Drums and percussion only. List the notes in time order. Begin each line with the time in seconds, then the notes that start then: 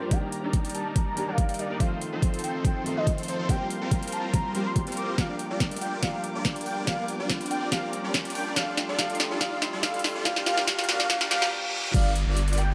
0.11 kick, closed hi-hat
0.32 closed hi-hat
0.53 kick, closed hi-hat
0.65 closed hi-hat
0.70 closed hi-hat
0.75 closed hi-hat
0.96 kick, closed hi-hat
1.17 closed hi-hat
1.38 kick, closed hi-hat
1.49 closed hi-hat
1.54 closed hi-hat
1.59 closed hi-hat
1.80 kick, closed hi-hat
2.01 closed hi-hat
2.22 kick, closed hi-hat
2.34 closed hi-hat
2.39 closed hi-hat
2.44 closed hi-hat
2.65 kick, closed hi-hat
2.86 closed hi-hat
3.07 kick, closed hi-hat
3.18 closed hi-hat
3.23 closed hi-hat
3.28 closed hi-hat
3.49 kick, closed hi-hat
3.70 closed hi-hat
3.91 kick, closed hi-hat
4.03 closed hi-hat
4.08 closed hi-hat
4.12 closed hi-hat
4.34 kick, closed hi-hat
4.55 closed hi-hat
4.76 kick, closed hi-hat
4.87 closed hi-hat
4.92 closed hi-hat
4.97 closed hi-hat
5.18 kick, snare, closed hi-hat
5.39 closed hi-hat
5.60 kick, snare, closed hi-hat
5.71 closed hi-hat
5.76 closed hi-hat
5.81 closed hi-hat
6.03 kick, snare, closed hi-hat
6.24 closed hi-hat
6.45 kick, snare, closed hi-hat
6.56 closed hi-hat
6.61 closed hi-hat
6.66 open hi-hat
6.87 kick, snare, closed hi-hat
7.08 closed hi-hat
7.30 kick, snare, closed hi-hat
7.41 closed hi-hat
7.46 closed hi-hat
7.51 closed hi-hat
7.72 kick, snare, closed hi-hat
7.93 closed hi-hat
8.14 kick, snare, closed hi-hat
8.25 closed hi-hat
8.30 closed hi-hat
8.35 open hi-hat
8.56 kick, snare, closed hi-hat
8.77 snare, closed hi-hat
8.99 kick, snare, closed hi-hat
9.10 closed hi-hat
9.15 closed hi-hat
9.20 snare, closed hi-hat
9.41 kick, snare, closed hi-hat
9.62 snare, closed hi-hat
9.83 kick, snare, closed hi-hat
9.94 closed hi-hat
9.99 closed hi-hat
10.04 snare, open hi-hat
10.25 kick, snare, closed hi-hat
10.36 snare
10.46 snare, closed hi-hat
10.58 snare
10.67 kick, snare, closed hi-hat
10.79 snare, closed hi-hat
10.84 closed hi-hat
10.89 snare, closed hi-hat
11.00 snare
11.10 kick, snare, closed hi-hat
11.21 snare
11.31 snare, closed hi-hat
11.42 snare
11.94 kick, closed hi-hat, crash
12.16 closed hi-hat
12.37 closed hi-hat
12.48 closed hi-hat
12.53 closed hi-hat
12.58 closed hi-hat